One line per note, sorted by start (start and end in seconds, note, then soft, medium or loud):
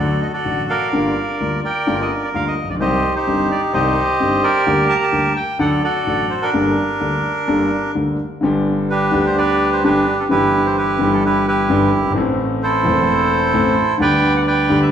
0.00 0.18 D2 medium
0.00 0.18 D3 medium
0.00 0.18 F#3 medium
0.00 0.18 A3 medium
0.00 0.18 F#4 medium
0.00 0.32 F#4 medium
0.00 0.32 A4 medium
0.00 0.20 D5 medium
0.22 0.27 D#5 medium
0.33 0.89 F#4 medium
0.33 0.89 A4 medium
0.33 0.66 D5 medium
0.45 0.65 A1 medium
0.45 0.65 A2 soft
0.45 0.65 D3 soft
0.45 0.65 F#3 soft
0.45 0.65 A3 soft
0.45 0.65 F#4 medium
0.70 1.60 A#4 medium
0.70 1.60 D5 medium
0.70 1.36 F5 medium
0.93 1.13 G1 medium
0.93 1.13 G2 medium
0.93 1.12 D3 medium
0.93 1.12 G3 medium
0.93 1.13 A#3 medium
0.93 1.13 F4 medium
1.40 1.60 D2 medium
1.40 1.60 D3 medium
1.40 1.60 G3 soft
1.40 1.60 A#3 soft
1.40 1.60 F4 soft
1.64 2.54 A#4 medium
1.64 2.23 D5 medium
1.64 1.97 G5 medium
1.87 2.07 G1 medium
1.87 2.07 G2 medium
1.87 2.07 D3 medium
1.87 2.07 G3 medium
1.87 2.07 A#3 medium
1.87 2.07 F4 medium
2.01 2.11 D#5 medium
2.24 2.29 D5 medium
2.34 2.54 D2 medium
2.34 2.54 D3 medium
2.34 2.54 G3 soft
2.34 2.54 A#3 soft
2.34 2.54 F4 medium
2.34 2.46 F5 medium
2.48 2.68 D#5 medium
2.64 2.70 A1 soft
2.69 2.75 A#1 medium
2.69 2.75 D5 medium
2.75 2.81 B1 medium
2.80 3.00 C2 medium
2.80 3.00 C3 medium
2.80 3.00 D#3 medium
2.80 3.00 G3 medium
2.80 3.00 C4 medium
2.80 3.00 G4 medium
2.80 3.15 G4 medium
2.80 3.15 C5 medium
2.80 3.13 D#5 medium
3.16 4.05 D#4 medium
3.16 3.72 G4 medium
3.16 3.49 C5 medium
3.27 3.47 G1 medium
3.27 3.47 G2 medium
3.27 3.47 D#3 soft
3.27 3.47 G3 soft
3.27 3.47 C4 soft
3.27 3.47 G4 medium
3.51 3.61 D5 medium
3.74 3.93 C2 medium
3.74 3.93 C3 medium
3.74 3.93 D#3 medium
3.74 3.93 G3 medium
3.74 3.93 C4 medium
3.74 4.42 G4 medium
3.74 3.93 G4 medium
3.74 4.63 C5 medium
3.74 4.46 D#5 medium
4.20 4.40 G1 medium
4.20 4.40 G2 medium
4.20 4.40 D#3 soft
4.20 4.40 G3 soft
4.20 4.40 C4 soft
4.20 4.40 G4 medium
4.43 5.33 G4 medium
4.43 5.33 A#4 medium
4.43 4.87 D5 loud
4.66 4.86 D2 medium
4.66 4.86 D3 medium
4.66 4.86 G3 medium
4.66 4.86 A#3 medium
4.66 4.86 G4 medium
4.89 4.97 A5 loud
4.96 5.04 A#5 medium
5.03 5.37 A5 medium
5.12 5.33 D2 medium
5.12 5.33 D3 medium
5.12 5.33 G3 soft
5.12 5.33 A#3 soft
5.12 5.33 G4 medium
5.36 5.58 G5 medium
5.59 5.79 D2 medium
5.59 5.79 D3 medium
5.59 5.79 F#3 medium
5.59 5.79 A3 medium
5.59 5.79 D4 medium
5.59 5.79 A4 medium
5.59 5.83 A4 medium
5.59 5.82 D5 medium
5.59 5.70 F#5 medium
5.84 6.50 F#4 medium
5.84 6.50 A4 medium
5.84 6.32 D5 loud
6.07 6.26 A1 medium
6.07 6.27 A2 medium
6.07 6.26 F#3 soft
6.07 6.26 A3 soft
6.07 6.27 D4 soft
6.07 6.27 A4 medium
6.30 6.42 C5 medium
6.42 7.92 D4 medium
6.42 7.91 A#4 medium
6.53 6.73 G1 medium
6.53 6.73 G2 medium
6.53 6.73 G3 medium
6.53 6.73 A#3 medium
6.53 6.73 D4 medium
6.53 6.73 A4 medium
7.00 7.20 D2 medium
7.00 7.20 D3 medium
7.00 7.20 G3 soft
7.00 7.20 A#3 soft
7.00 7.20 D4 soft
7.00 7.21 A4 medium
7.48 7.68 G1 medium
7.48 7.68 G2 medium
7.48 7.68 G3 medium
7.48 7.68 A#3 medium
7.48 7.68 D4 medium
7.48 7.68 A4 medium
7.95 8.16 D2 medium
7.95 8.15 D3 medium
7.95 8.15 G3 soft
7.95 8.16 A#3 soft
7.95 8.15 D4 soft
7.95 8.16 A4 soft
8.41 9.10 G1 medium
8.41 9.10 G2 medium
8.41 9.09 D3 medium
8.41 9.10 G3 medium
8.41 9.11 B3 medium
8.41 9.11 G4 medium
8.90 9.80 D4 medium
8.90 9.37 G4 medium
8.90 9.27 B4 loud
9.11 9.80 D2 medium
9.11 9.13 D3 medium
9.11 9.80 D3 medium
9.11 9.80 G3 medium
9.11 9.81 B3 medium
9.11 9.81 G4 medium
9.26 9.37 C5 loud
9.38 9.83 G4 medium
9.38 9.83 B4 medium
9.38 9.70 D5 loud
9.73 9.83 C5 medium
9.84 10.04 G1 medium
9.84 10.04 G2 loud
9.84 10.04 D3 medium
9.84 10.04 G3 medium
9.84 10.04 B3 medium
9.84 10.28 D4 medium
9.84 10.04 G4 medium
9.84 10.28 G4 medium
9.84 10.20 B4 loud
10.19 10.24 A4 medium
10.29 10.97 G1 medium
10.29 10.31 G2 medium
10.29 10.97 G2 medium
10.29 10.96 E3 medium
10.29 10.97 G3 medium
10.29 10.97 B3 medium
10.29 10.76 E4 medium
10.29 10.76 G4 medium
10.29 10.66 B4 loud
10.33 10.98 G4 medium
10.66 10.78 C5 medium
10.77 11.23 E4 medium
10.77 11.24 G4 medium
10.77 11.13 B4 loud
10.99 11.66 G1 medium
10.99 11.00 G2 medium
10.99 11.66 G2 medium
10.99 11.66 E3 medium
10.99 11.66 G3 medium
10.99 11.67 B3 medium
10.99 11.67 G4 medium
11.13 11.23 A4 medium
11.25 11.46 E4 medium
11.25 11.46 G4 medium
11.25 11.46 B4 medium
11.48 12.12 E4 medium
11.48 12.12 G4 medium
11.48 11.90 B4 medium
11.70 11.89 G1 medium
11.70 11.89 G2 medium
11.70 11.89 E3 medium
11.70 11.89 G3 medium
11.70 11.89 B3 medium
11.70 11.89 G4 medium
11.99 12.04 F#1 medium
12.05 12.10 G1 medium
12.10 12.16 G#1 medium
12.10 12.80 E3 medium
12.15 12.81 A1 medium
12.15 12.81 A2 medium
12.15 12.81 A3 medium
12.15 12.82 C4 medium
12.15 12.82 A4 medium
12.63 13.97 E4 medium
12.63 13.97 A4 medium
12.63 13.97 C5 loud
12.83 13.51 E1 medium
12.83 13.51 E2 medium
12.83 13.50 E3 medium
12.83 13.50 A3 medium
12.83 13.51 C4 medium
12.83 13.52 A4 medium
13.53 13.73 A1 medium
13.53 13.73 A2 medium
13.53 13.73 E3 medium
13.53 13.73 A3 medium
13.53 13.73 C4 medium
13.53 13.74 A4 medium
13.98 14.67 D2 medium
13.98 13.99 D3 medium
13.98 14.67 D3 medium
13.98 14.66 G3 medium
13.98 14.67 B3 medium
13.98 14.46 B4 medium
13.98 14.46 D5 medium
13.98 14.34 G5 loud
14.02 14.68 G4 medium
14.36 14.41 F#5 medium
14.47 14.91 B4 medium
14.47 14.91 D5 medium
14.47 14.80 G5 loud
14.69 14.90 D2 medium
14.69 14.90 D3 medium
14.69 14.90 G3 medium
14.69 14.90 B3 medium
14.69 14.90 G4 medium
14.82 14.87 E5 medium